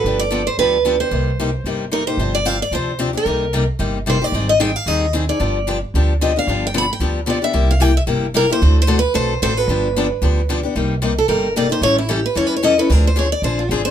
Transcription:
Already playing: steel-string acoustic guitar B4
0.04 upright bass G1, steel-string acoustic guitar D3 F3 B3 D4 G4
0.19 steel-string acoustic guitar D5
0.31 steel-string acoustic guitar D3 F3 B3 D4 G4
0.47 steel-string acoustic guitar C5
0.58 upright bass D2, steel-string acoustic guitar D3 F3 B3 D4 G4 B4
0.85 steel-string acoustic guitar D3 F3 B3 D4 G4
1.00 steel-string acoustic guitar B3 D4 G4 C5
1.11 upright bass C2, steel-string acoustic guitar C3 G3 A#3 D#4 G4
1.40 steel-string acoustic guitar C3 G3 A#3 D#4 G4
1.64 upright bass G1, steel-string acoustic guitar C3 G3 A#3 D#4 G4
1.92 steel-string acoustic guitar C3 G3 A#3 D#4 G4 A#4
2.07 steel-string acoustic guitar A#3 D#4 G4 C5
2.17 upright bass G1, steel-string acoustic guitar C3 F3 C4 D4 G4
2.35 steel-string acoustic guitar D5
2.45 steel-string acoustic guitar C3 F3 C4 D4 G4 F5
2.62 steel-string acoustic guitar D5
2.71 upright bass D2, steel-string acoustic guitar C3 F3 C4 D4 G4 C5
2.99 steel-string acoustic guitar C3 F3 C4 D4 G4
3.13 steel-string acoustic guitar C4 D4 G4
3.17 steel-string acoustic guitar A#4
3.26 upright bass C2, steel-string acoustic guitar C3 G3 A#3 D#4 G4
3.53 steel-string acoustic guitar C3 G3 A#3 D#4 G4
3.79 upright bass G1, steel-string acoustic guitar C3 G3 A#3 D#4 G4
4.06 steel-string acoustic guitar C3 G3 A#3 D#4 G4 C5
4.22 steel-string acoustic guitar A#3 D#4 G4 D5
4.32 upright bass G#1, steel-string acoustic guitar D#3 G3 C4 D#4 G#4
4.49 steel-string acoustic guitar D#5
4.60 steel-string acoustic guitar D#3 G3 C4 D#4 G#4 G5
4.76 steel-string acoustic guitar F5
4.86 upright bass D#2, steel-string acoustic guitar D#3 G3 C4 D#4 G#4 D#5
5.13 steel-string acoustic guitar D#3 G3 C4 D#4 G#4
5.29 steel-string acoustic guitar C4 D#4 G#4 D5
5.40 upright bass G1, steel-string acoustic guitar D3 F3 B3 D4 G4
5.67 steel-string acoustic guitar D3 F3 B3 D4 G4
5.94 upright bass D2, steel-string acoustic guitar D3 F3 B3 D4 G4
6.21 steel-string acoustic guitar D3 F3 B3 D4 G4 D#5
6.37 steel-string acoustic guitar B3 D4 F5
6.47 upright bass G1, steel-string acoustic guitar D3 F3 B3 D4 G4
6.67 steel-string acoustic guitar G5
6.74 steel-string acoustic guitar D3 F3 B3 D4 G4 B5
6.93 steel-string acoustic guitar G5
7.00 upright bass D2, steel-string acoustic guitar D3 F3 B3 D4 G4
7.26 steel-string acoustic guitar D3 F3 B3 D4 G4 D5
7.42 steel-string acoustic guitar B3 D4 G4 E5
7.53 upright bass C2, steel-string acoustic guitar C3 G3 A#3 E4 G4
7.71 steel-string acoustic guitar F5
7.80 steel-string acoustic guitar C3 G3 A#3 E4 G4 G5
7.97 steel-string acoustic guitar E5
8.07 upright bass G1, steel-string acoustic guitar C3 G3 A#3 E4 G4
8.34 steel-string acoustic guitar C3 G3 A#3 E4 G4 A#4
8.50 steel-string acoustic guitar A#3 E4 G4 C5
8.62 upright bass D2, steel-string acoustic guitar D3 A3 C4 F#4 A4
8.82 steel-string acoustic guitar C5
8.87 steel-string acoustic guitar D3 A3 C4 F#4 A4
8.99 steel-string acoustic guitar B4
9.14 upright bass B1, steel-string acoustic guitar D3 A3 C4 F#4 A4 C5
9.42 upright bass A1, steel-string acoustic guitar D3 A3 C4 F#4 A4 C5
9.57 steel-string acoustic guitar C4 F#4 A4 B4
9.68 upright bass G1, steel-string acoustic guitar D3 F3 B3 D4 G4
9.96 steel-string acoustic guitar D3 F3 B3 D4 G4
10.22 upright bass D2, steel-string acoustic guitar D3 F3 B3 D4 G4
10.49 steel-string acoustic guitar D3 F3 B3 D4 G4
10.63 steel-string acoustic guitar B3 D4 G4
10.75 upright bass C2, steel-string acoustic guitar C3 G3 A#3 D#4 G4
11.02 steel-string acoustic guitar C3 G3 A#3 D#4 G4
11.18 steel-string acoustic guitar A4
11.28 upright bass G1, steel-string acoustic guitar C3 G3 A#3 D#4 G4 A#4
11.56 steel-string acoustic guitar C3 G3 A#3 D#4 G4 D5
11.70 steel-string acoustic guitar A#3 D#4 G4 C5
11.81 upright bass A1, steel-string acoustic guitar E3 G3 C#4 E4 A4 C#5
11.98 steel-string acoustic guitar E4
12.09 steel-string acoustic guitar E3 G3 C#4 E4 G4 A4
12.26 steel-string acoustic guitar B4
12.35 upright bass E2, steel-string acoustic guitar E3 G3 C#4 E4 A4 C#5
12.47 steel-string acoustic guitar B4
12.57 steel-string acoustic guitar C#5
12.63 steel-string acoustic guitar E3 G3 C#4 E4 A4 D#5
12.78 steel-string acoustic guitar C#4 E4 A4 B4
12.90 upright bass D2, steel-string acoustic guitar D3 F3 C4 D4 G#4 A#4
13.07 steel-string acoustic guitar C5
13.16 steel-string acoustic guitar D3 F3 C4 D4 G#4 C#5
13.32 steel-string acoustic guitar D5
13.42 upright bass A#1, steel-string acoustic guitar D3 F3 C4 D4 G#4 C5
13.59 steel-string acoustic guitar F4
13.69 upright bass G#1, steel-string acoustic guitar D3 F3 C4 D4 G#4
13.85 steel-string acoustic guitar C4 D4 G#4 C5

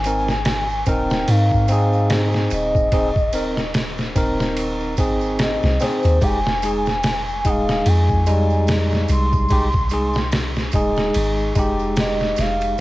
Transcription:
Already playing: 808-style bass G#1, soft synth lead G#5
0.04 tine electric piano C4 D#4 A#4, ride, tambourine
0.29 snare, tambourine
0.45 snare, ride, tambourine
0.69 tambourine
0.86 808-style bass D#1, tine electric piano C4 D#4 A#4, soft synth lead G5, kick, ride, tambourine
1.10 snare, tambourine
1.28 808-style bass G#2, soft synth lead F5, ride, tambourine
1.51 kick, tambourine
1.68 tine electric piano C4 D#4, ride, tambourine
1.72 tine electric piano G#4
1.93 tambourine
2.10 snare, ride, tambourine
2.33 snare, tambourine
2.50 808-style bass D#1, soft synth lead D#5, ride, tambourine
2.75 kick, tambourine
2.92 tine electric piano C4 D#4 G#4, kick, ride, tambourine
3.16 kick, tambourine
3.33 tine electric piano C4 D#4 A#4, ride, tambourine
3.57 snare, tambourine
3.74 snare, ride, tambourine
3.98 snare, tambourine
4.16 808-style bass D#1, tine electric piano C4 D#4 A#4, kick, ride, tambourine
4.40 snare, tambourine
4.57 ride, tambourine
4.81 tambourine
4.97 808-style bass G#1, tine electric piano C4 D#4 G#4, kick, ride, tambourine
5.21 tambourine
5.39 soft synth lead D#5, snare, ride, tambourine
5.63 808-style bass C2, snare, tambourine
5.80 tine electric piano C4 D#4 G#4, soft synth lead C5, snare, ride, tambourine
6.03 808-style bass D#2, ride, tambourine
6.21 808-style bass F1, tine electric piano G#3 D#4 G4, soft synth lead G#5, kick, ride, tambourine
6.45 snare, tambourine
6.62 tine electric piano G#3 D#4 G#4, ride, tambourine
6.86 snare, tambourine
7.03 snare, ride, tambourine
7.28 tambourine
7.45 808-style bass D#1, tine electric piano G#3 D#4 G#4, kick, ride, tambourine
7.49 soft synth lead F5
7.69 snare, tambourine
7.86 808-style bass F2, soft synth lead G#5, ride, tambourine
8.10 kick, tambourine
8.26 tine electric piano G3 G#3 D#4, ride, tambourine
8.50 tambourine
8.67 snare, ride, tambourine
8.91 snare, tambourine
9.08 808-style bass C2, soft synth lead C6, ride, tambourine
9.33 kick, tambourine
9.48 tine electric piano G#3 D#4, kick, ride, tambourine
9.52 tine electric piano G4
9.73 kick, tambourine
9.89 tine electric piano G#3 D#4, ride, tambourine
9.93 tine electric piano G#4
10.13 snare, tambourine
10.31 snare, ride, tambourine
10.56 snare, tambourine
10.72 808-style bass D#1, tine electric piano G#3 D#4 G#4, kick, ride, tambourine
10.96 snare, tambourine
11.14 808-style bass G#1, ride, tambourine
11.38 tambourine
11.55 808-style bass F1, tine electric piano G#3 D#4 G4, kick, ride, tambourine
11.80 tambourine
11.96 soft synth lead D#5, snare, ride, tambourine
12.20 snare, tambourine
12.36 808-style bass F1, soft synth lead F5, snare, ride, tambourine
12.61 ride, tambourine

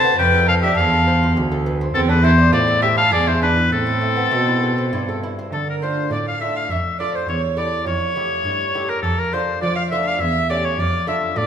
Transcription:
Already playing: lute C3 A3, cello C3, violin C5, oboe A5
0.04 lute B3
0.18 cello F2, lute F2, violin B4, oboe G5
0.34 lute A4
0.48 lute C4, violin A4, oboe F5
0.62 lute D4, violin G4, oboe E5
0.77 cello E2, lute E2 C4, violin A4, oboe F5
0.94 lute A4
1.07 lute C5
1.23 lute F4
1.36 cello D2, lute D2
1.52 lute A4
1.66 lute B3
1.81 lute C4
1.94 cello E2, lute E2, violin C4, oboe A4
2.09 violin D4, lute A4, oboe B4
2.22 lute C4, violin E4, oboe C5
2.38 lute D4
2.52 lute A2 C4, cello A2, violin F4, oboe D5
2.68 lute A4
2.82 violin G4, lute C5, oboe E5
2.97 lute E4, violin A4, oboe F5
3.12 lute E2, cello E2, violin G#4, oboe D5
3.26 violin E4, lute G#4, oboe C5
3.42 lute D4, violin D4, oboe B4
3.56 lute E4
3.71 cello A2, lute A2, violin C4, oboe A4
3.86 lute E4
4.01 lute A3
4.16 lute B3
4.31 lute B2 A3, cello B2
4.48 lute E4
4.63 lute A4
4.78 lute C4
4.92 cello G2, lute G2 E4
5.09 lute A4
5.23 lute E4
5.39 lute C4
5.51 cello D3, lute D3, violin A4, oboe A4
5.67 violin A#4, oboe A#4
5.82 lute A3 D4 F4, oboe C5, violin C5
6.10 cello A2, lute A2, oboe D5, violin D5
6.27 violin F5, oboe F5
6.41 lute A3 D4 F4, oboe E5, violin E5
6.56 violin F5, oboe F5
6.69 cello F2, lute F2, oboe E5, violin E5
6.99 lute A3 D4 F4, violin D5, oboe D5
7.15 violin C5, oboe C5
7.27 cello E2, lute E2, violin C#5, oboe C#5
7.57 lute A3 E4 G4, violin D5, oboe D5
7.85 cello F2, lute F2, violin C#5, oboe C#5
8.16 lute A3 E4 G4
8.43 cello G2, lute G2
8.74 lute A3 E4 G4
8.88 violin A#4, oboe A#4
9.02 cello F2, lute F2, oboe A4, violin A4
9.18 violin A#4, oboe A#4
9.32 lute A3 D4 F4, violin C5, oboe C5
9.61 cello F3, lute F3, oboe D5, violin D5
9.76 violin F5, oboe F5
9.90 lute A3 D4 F4, violin E5, oboe E5
10.05 violin F5, oboe F5
10.19 cello E2, lute E2, oboe E5, violin E5
10.49 lute A3 C#4 G4, oboe D5, violin D5
10.64 violin C#5, oboe C#5
10.77 cello F2, lute F2, violin D5, oboe D5
11.07 lute A3 D4 F4, violin E5, oboe E5
11.36 lute A2, cello A2, violin D5, oboe D5

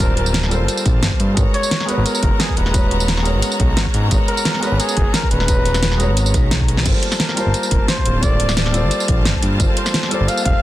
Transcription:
Already playing: analog synth bass D1, felt piano G3 A4 C5, string section A#3 C4 F4 A5
0.00 felt piano F4 A#4 C5 A5, muted trumpet A#4
0.17 muted trumpet A#4, closed hi-hat
0.26 tambourine
0.34 snare, closed hi-hat, tambourine
0.43 snare
0.48 felt piano G3 F4 A4, closed hi-hat, tambourine
0.53 felt piano A#4 C5
0.60 analog synth bass G1
0.68 closed hi-hat, tambourine
0.77 tambourine
0.86 analog synth bass A#1, kick, closed hi-hat, tambourine
1.03 analog synth bass G1, snare, closed hi-hat, tambourine
1.12 kick
1.20 analog synth bass G2, closed hi-hat
1.34 analog synth bass G#1, felt piano G#3 F#4 A#4, string section B3 C#4 F#4 A#5, kick, closed hi-hat, tambourine
1.39 felt piano B4 C#5
1.54 muted trumpet C#5, closed hi-hat
1.63 tambourine
1.71 snare, closed hi-hat
1.80 snare
1.85 felt piano G#3 F#4 A#4, muted trumpet B4, closed hi-hat, tambourine
1.90 felt piano B3 C#5
1.97 analog synth bass G#1
2.06 muted trumpet A#4, closed hi-hat, tambourine
2.15 tambourine
2.23 analog synth bass F#1, kick, closed hi-hat
2.40 muted trumpet G#4, snare, closed hi-hat, tambourine
2.49 kick
2.57 analog synth bass D#1, muted trumpet B4, closed hi-hat
2.66 snare
2.71 felt piano G#3 F#4 A#5, kick, closed hi-hat, tambourine
2.76 felt piano B4 C#5
2.91 closed hi-hat
3.00 tambourine
3.08 snare, closed hi-hat, tambourine
3.17 snare
3.22 felt piano G#3 F#4 A#4, closed hi-hat, tambourine
3.27 felt piano B4 C#5
3.35 analog synth bass G#1
3.42 closed hi-hat, tambourine
3.52 tambourine
3.60 analog synth bass B1, kick, closed hi-hat
3.77 analog synth bass G#1, snare, closed hi-hat, tambourine
3.86 kick
3.94 analog synth bass G#2, closed hi-hat
4.08 analog synth bass G#1, felt piano G#3 F#4 A#4, kick, closed hi-hat, tambourine
4.13 felt piano B3 C#5
4.28 muted trumpet A#4, closed hi-hat
4.37 tambourine
4.45 snare, closed hi-hat, tambourine
4.54 snare
4.60 felt piano G#3 F#4 A#4, muted trumpet B4, closed hi-hat, tambourine
4.64 felt piano B4 C#5
4.72 analog synth bass G#1
4.80 muted trumpet G#4, closed hi-hat, tambourine
4.89 tambourine
4.97 analog synth bass F#1, kick, closed hi-hat
5.14 muted trumpet A#4, snare, closed hi-hat, tambourine
5.23 kick
5.31 analog synth bass D#1, muted trumpet B4, closed hi-hat
5.40 snare
5.45 felt piano G#3 F#4 A#5, kick, closed hi-hat, tambourine
5.50 felt piano B4 C#5
5.65 closed hi-hat, tambourine
5.74 snare, tambourine
5.83 snare, closed hi-hat, tambourine
5.92 snare
5.97 felt piano G#3 F#4 A#5, closed hi-hat, tambourine
6.01 felt piano B4 C#5
6.09 analog synth bass G#1
6.17 closed hi-hat, tambourine
6.26 tambourine
6.34 analog synth bass B1, kick, closed hi-hat, tambourine
6.51 snare, closed hi-hat, tambourine
6.60 kick
6.68 closed hi-hat
6.77 snare
6.83 analog synth bass G1, felt piano G3 F4 A4, string section A#3 C4 F4 A5, kick, closed hi-hat, tambourine, crash
6.87 felt piano A#4 C5
7.03 closed hi-hat
7.12 snare, tambourine
7.20 muted trumpet A#4, snare, closed hi-hat, tambourine
7.29 snare
7.34 felt piano G3 F4 A5, closed hi-hat, tambourine
7.39 felt piano A#4 C5
7.46 analog synth bass G1
7.54 closed hi-hat, tambourine
7.63 tambourine
7.71 analog synth bass F1, kick, closed hi-hat
7.88 muted trumpet C5, snare, closed hi-hat, tambourine
7.98 kick
8.05 analog synth bass D1, closed hi-hat
8.20 felt piano G3 F4 A4, muted trumpet D5, kick, closed hi-hat, tambourine
8.24 felt piano A#4 C5
8.40 closed hi-hat
8.49 snare, tambourine
8.57 muted trumpet D5, snare, closed hi-hat, tambourine
8.66 snare
8.71 felt piano G3 F4 A4, closed hi-hat, tambourine
8.76 felt piano A#4 C5
8.83 analog synth bass G1
8.91 closed hi-hat, tambourine
9.00 tambourine
9.08 analog synth bass A#1, kick, closed hi-hat
9.25 analog synth bass G1, snare, closed hi-hat, tambourine
9.35 kick
9.42 analog synth bass G2, closed hi-hat
9.57 analog synth bass G1, felt piano G3 F4 A4, kick, closed hi-hat, tambourine
9.61 felt piano A#4 C5
9.77 muted trumpet C5, closed hi-hat
9.86 snare, tambourine
9.94 snare, closed hi-hat, tambourine
10.03 snare
10.08 felt piano G3 F4 A4, muted trumpet D5, closed hi-hat, tambourine
10.13 felt piano A#4 C5
10.20 analog synth bass G1
10.28 muted trumpet F5, closed hi-hat, tambourine
10.37 tambourine
10.46 analog synth bass F1, muted trumpet F5, kick, closed hi-hat

